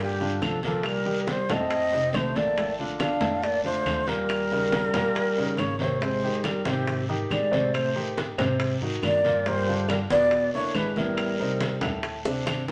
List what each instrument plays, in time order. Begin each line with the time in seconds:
Already playing: upright bass G2, grand piano A#2 A#3 A#4
0.00 trombone D3, shakuhachi G4
0.20 grand piano D3 D4 F4, high bongo, high conga
0.41 upright bass C2, trombone F3, shakuhachi A4, high bongo, low bongo, high conga, short guiro, claves
0.62 grand piano A#2 A#3 A#4, trombone F3, shakuhachi A4, high bongo, high conga, short guiro
0.83 trombone G3, shakuhachi A#4, high bongo, high conga, long guiro, claves
1.06 grand piano D#3 D#4 G4, high bongo, high conga
1.27 trombone G3, shakuhachi C5, high bongo, high conga, short guiro
1.49 upright bass F2, grand piano A2 A3 A4, trombone C4, shakuhachi D#5, high conga, low conga, short guiro, claves
1.70 high bongo, high conga, long guiro
1.92 grand piano C3 C4 D#4, high bongo, high conga
2.13 upright bass A#1, trombone A3, shakuhachi C5, high bongo, low bongo, high conga, short guiro, claves
2.36 grand piano A2 A3 A4, trombone A#3, shakuhachi D5, high bongo, high conga, short guiro
2.56 grand piano A2 A3 A4, high bongo, high conga, long guiro
2.79 grand piano D3 D4 F4, high bongo, high conga
2.99 trombone D4, shakuhachi F5, high bongo, high conga, short guiro, claves
3.20 upright bass F2, grand piano A2 A3 A4, high conga, short guiro
3.42 trombone A#3, shakuhachi D5, high bongo, high conga, long guiro
3.64 grand piano D3 D4 F4, trombone A3, shakuhachi C5, high bongo, high conga
3.85 upright bass D#2, high bongo, low bongo, high conga, short guiro, claves
4.07 grand piano A#2 A#3 A#4, trombone G3, shakuhachi A#4, high bongo, high conga, short guiro
4.29 high bongo, high conga, long guiro, claves
4.51 grand piano C#3 C#4 D#4, high bongo, high conga
4.72 high bongo, high conga, short guiro
4.93 upright bass A#1, grand piano A#2 A#3 A#4, high conga, low conga, short guiro, claves
5.15 high bongo, high conga, long guiro
5.37 grand piano C#3 C#4 D#4, high bongo, high conga
5.57 upright bass G#1, trombone A#3, shakuhachi C#5, high bongo, low bongo, high conga, short guiro, claves
5.79 grand piano C3 C4 C5, trombone A#3, shakuhachi C#5, high bongo, high conga, short guiro
6.00 grand piano C3 C4 C5, trombone G#3, shakuhachi C5, high bongo, high conga, long guiro
6.23 grand piano D#3 D#4 G4, high bongo, high conga
6.43 trombone G3, shakuhachi A#4, high bongo, high conga, short guiro, claves
6.65 upright bass G#2, grand piano C3 C4 C5, trombone D#3, shakuhachi G4, high conga, short guiro
6.88 high bongo, high conga, long guiro
7.09 grand piano D#3 D#4 G4, high bongo, high conga
7.30 upright bass A2, trombone G#3, shakuhachi D5, high bongo, low bongo, high conga, short guiro, claves
7.51 grand piano C3 C4 C5, high bongo, high conga, short guiro
7.73 trombone A3, shakuhachi C5, high bongo, high conga, long guiro, claves
7.96 grand piano D#3 D#4 G4, high bongo, high conga
8.17 high bongo, high conga, short guiro
8.37 upright bass G#2, grand piano C3 C4 C5, high conga, low conga, short guiro, claves
8.60 high bongo, high conga, long guiro
8.81 upright bass G#2, grand piano D#3 D#4 F#4, high bongo, high conga
9.02 upright bass G2, trombone A#3, shakuhachi D5, high bongo, low bongo, high conga, short guiro, claves
9.24 grand piano A#2 A#3 A#4, high bongo, high conga, short guiro
9.46 grand piano A#2 A#3 A#4, trombone G3, shakuhachi C5, high bongo, high conga, long guiro
9.67 grand piano D3 D4 F4, high bongo, high conga
9.88 trombone G3, shakuhachi A#4, high bongo, high conga, short guiro, claves
10.09 upright bass E2, grand piano B2 B3 B4, trombone B3, shakuhachi D5, high conga, short guiro
10.31 high bongo, high conga, long guiro
10.53 grand piano D3 D4 E4, trombone A#3, shakuhachi C#5, high bongo, high conga
10.74 upright bass A1, trombone G#3, shakuhachi B4, high bongo, low bongo, high conga, short guiro, claves
10.96 grand piano A2 B3 E4, trombone G3, shakuhachi A#4, high bongo, high conga, short guiro
11.17 high bongo, high conga, long guiro, claves
11.39 grand piano C3 C4 D#4, high bongo, high conga
11.61 high bongo, high conga, short guiro
11.81 upright bass D2, grand piano A2 A3 A4, high conga, low conga, short guiro, claves
12.03 high bongo, high conga, long guiro
12.25 grand piano C3 C4 D4, high bongo, high conga
12.46 upright bass G1, high bongo, high conga, short guiro, claves
12.68 low bongo, high conga